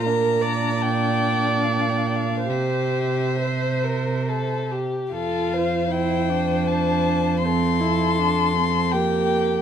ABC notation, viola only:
X:1
M:3/4
L:1/8
Q:1/4=77
K:F
V:1 name="Viola"
B d4- d | c4- c z | F2 E D3 | C E D C B,2 |]